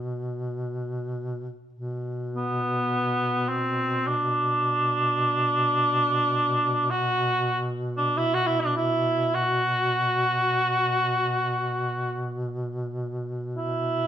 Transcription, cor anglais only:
0, 0, Header, 1, 2, 480
1, 0, Start_track
1, 0, Tempo, 500000
1, 13510, End_track
2, 0, Start_track
2, 0, Title_t, "Cor anglais"
2, 0, Program_c, 0, 69
2, 2267, Note_on_c, 0, 59, 58
2, 3347, Note_on_c, 0, 60, 57
2, 3361, Note_off_c, 0, 59, 0
2, 3910, Note_on_c, 0, 62, 77
2, 3924, Note_off_c, 0, 60, 0
2, 6627, Note_on_c, 0, 66, 78
2, 6641, Note_off_c, 0, 62, 0
2, 7358, Note_off_c, 0, 66, 0
2, 7653, Note_on_c, 0, 62, 61
2, 7848, Note_on_c, 0, 64, 66
2, 7862, Note_off_c, 0, 62, 0
2, 8007, Note_on_c, 0, 66, 74
2, 8021, Note_off_c, 0, 64, 0
2, 8127, Note_on_c, 0, 64, 71
2, 8141, Note_off_c, 0, 66, 0
2, 8261, Note_on_c, 0, 62, 65
2, 8275, Note_off_c, 0, 64, 0
2, 8400, Note_off_c, 0, 62, 0
2, 8411, Note_on_c, 0, 64, 66
2, 8971, Note_on_c, 0, 66, 77
2, 8985, Note_off_c, 0, 64, 0
2, 11950, Note_off_c, 0, 66, 0
2, 13030, Note_on_c, 0, 64, 67
2, 13510, Note_off_c, 0, 64, 0
2, 13510, End_track
0, 0, End_of_file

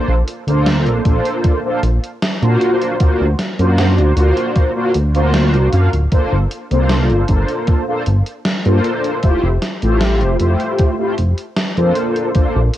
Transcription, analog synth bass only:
0, 0, Header, 1, 2, 480
1, 0, Start_track
1, 0, Tempo, 779221
1, 1848, Time_signature, 4, 2, 24, 8
1, 7871, End_track
2, 0, Start_track
2, 0, Title_t, "Analog synth bass"
2, 0, Program_c, 0, 38
2, 52, Note_on_c, 0, 34, 103
2, 142, Note_off_c, 0, 34, 0
2, 291, Note_on_c, 0, 38, 92
2, 532, Note_on_c, 0, 34, 112
2, 541, Note_off_c, 0, 38, 0
2, 622, Note_off_c, 0, 34, 0
2, 649, Note_on_c, 0, 34, 85
2, 746, Note_off_c, 0, 34, 0
2, 1128, Note_on_c, 0, 34, 85
2, 1225, Note_off_c, 0, 34, 0
2, 1492, Note_on_c, 0, 46, 92
2, 1582, Note_off_c, 0, 46, 0
2, 1850, Note_on_c, 0, 38, 44
2, 1949, Note_off_c, 0, 38, 0
2, 1973, Note_on_c, 0, 38, 101
2, 2063, Note_off_c, 0, 38, 0
2, 2212, Note_on_c, 0, 42, 85
2, 2452, Note_on_c, 0, 38, 115
2, 2461, Note_off_c, 0, 42, 0
2, 2542, Note_off_c, 0, 38, 0
2, 2565, Note_on_c, 0, 38, 91
2, 2664, Note_off_c, 0, 38, 0
2, 3050, Note_on_c, 0, 38, 86
2, 3414, Note_on_c, 0, 36, 105
2, 3423, Note_off_c, 0, 38, 0
2, 3503, Note_off_c, 0, 36, 0
2, 3531, Note_on_c, 0, 42, 81
2, 3627, Note_off_c, 0, 42, 0
2, 3655, Note_on_c, 0, 26, 85
2, 3744, Note_off_c, 0, 26, 0
2, 3771, Note_on_c, 0, 31, 43
2, 3869, Note_off_c, 0, 31, 0
2, 3895, Note_on_c, 0, 31, 97
2, 3983, Note_off_c, 0, 31, 0
2, 4135, Note_on_c, 0, 36, 89
2, 4375, Note_on_c, 0, 31, 113
2, 4384, Note_off_c, 0, 36, 0
2, 4463, Note_off_c, 0, 31, 0
2, 4490, Note_on_c, 0, 31, 84
2, 4586, Note_off_c, 0, 31, 0
2, 4971, Note_on_c, 0, 31, 88
2, 5067, Note_off_c, 0, 31, 0
2, 5334, Note_on_c, 0, 43, 90
2, 5423, Note_off_c, 0, 43, 0
2, 5691, Note_on_c, 0, 29, 44
2, 5789, Note_off_c, 0, 29, 0
2, 5813, Note_on_c, 0, 29, 100
2, 5903, Note_off_c, 0, 29, 0
2, 6056, Note_on_c, 0, 33, 88
2, 6296, Note_on_c, 0, 29, 114
2, 6305, Note_off_c, 0, 33, 0
2, 6384, Note_off_c, 0, 29, 0
2, 6410, Note_on_c, 0, 29, 86
2, 6506, Note_off_c, 0, 29, 0
2, 6892, Note_on_c, 0, 29, 84
2, 6987, Note_off_c, 0, 29, 0
2, 7256, Note_on_c, 0, 41, 93
2, 7344, Note_off_c, 0, 41, 0
2, 7610, Note_on_c, 0, 34, 43
2, 7709, Note_off_c, 0, 34, 0
2, 7735, Note_on_c, 0, 34, 100
2, 7824, Note_off_c, 0, 34, 0
2, 7871, End_track
0, 0, End_of_file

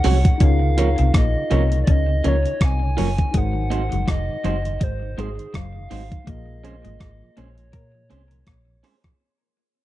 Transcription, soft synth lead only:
0, 0, Header, 1, 2, 480
1, 0, Start_track
1, 0, Tempo, 732601
1, 267, Time_signature, 4, 2, 24, 8
1, 6449, End_track
2, 0, Start_track
2, 0, Title_t, "Soft synth lead"
2, 0, Program_c, 0, 80
2, 0, Note_on_c, 0, 78, 114
2, 277, Note_off_c, 0, 78, 0
2, 289, Note_on_c, 0, 77, 99
2, 732, Note_off_c, 0, 77, 0
2, 766, Note_on_c, 0, 75, 97
2, 1171, Note_off_c, 0, 75, 0
2, 1203, Note_on_c, 0, 74, 76
2, 1250, Note_on_c, 0, 75, 111
2, 1260, Note_off_c, 0, 74, 0
2, 1491, Note_on_c, 0, 73, 106
2, 1501, Note_off_c, 0, 75, 0
2, 1729, Note_on_c, 0, 80, 110
2, 1739, Note_off_c, 0, 73, 0
2, 2210, Note_on_c, 0, 78, 105
2, 2220, Note_off_c, 0, 80, 0
2, 2679, Note_off_c, 0, 78, 0
2, 2687, Note_on_c, 0, 75, 112
2, 3165, Note_on_c, 0, 72, 100
2, 3175, Note_off_c, 0, 75, 0
2, 3404, Note_on_c, 0, 68, 88
2, 3414, Note_off_c, 0, 72, 0
2, 3642, Note_on_c, 0, 77, 109
2, 3652, Note_off_c, 0, 68, 0
2, 4116, Note_off_c, 0, 77, 0
2, 4124, Note_on_c, 0, 75, 97
2, 4841, Note_on_c, 0, 73, 84
2, 4851, Note_off_c, 0, 75, 0
2, 5795, Note_off_c, 0, 73, 0
2, 6449, End_track
0, 0, End_of_file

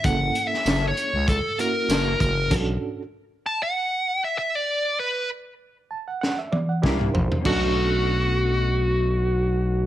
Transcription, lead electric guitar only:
0, 0, Header, 1, 2, 480
1, 0, Start_track
1, 0, Key_signature, 2, "minor"
1, 0, Tempo, 617284
1, 33, Time_signature, 4, 2, 24, 8
1, 7669, End_track
2, 0, Start_track
2, 0, Title_t, "Lead electric guitar"
2, 0, Program_c, 0, 29
2, 40, Note_on_c, 0, 78, 100
2, 366, Note_off_c, 0, 78, 0
2, 366, Note_on_c, 0, 76, 96
2, 657, Note_off_c, 0, 76, 0
2, 685, Note_on_c, 0, 73, 88
2, 977, Note_off_c, 0, 73, 0
2, 1003, Note_on_c, 0, 69, 88
2, 1222, Note_off_c, 0, 69, 0
2, 1248, Note_on_c, 0, 70, 95
2, 1710, Note_off_c, 0, 70, 0
2, 1719, Note_on_c, 0, 70, 92
2, 1963, Note_off_c, 0, 70, 0
2, 2693, Note_on_c, 0, 81, 95
2, 2812, Note_off_c, 0, 81, 0
2, 2823, Note_on_c, 0, 78, 93
2, 3280, Note_off_c, 0, 78, 0
2, 3299, Note_on_c, 0, 76, 81
2, 3397, Note_off_c, 0, 76, 0
2, 3408, Note_on_c, 0, 76, 91
2, 3540, Note_off_c, 0, 76, 0
2, 3540, Note_on_c, 0, 74, 84
2, 3870, Note_off_c, 0, 74, 0
2, 3883, Note_on_c, 0, 71, 103
2, 4111, Note_off_c, 0, 71, 0
2, 5802, Note_on_c, 0, 66, 80
2, 7669, Note_off_c, 0, 66, 0
2, 7669, End_track
0, 0, End_of_file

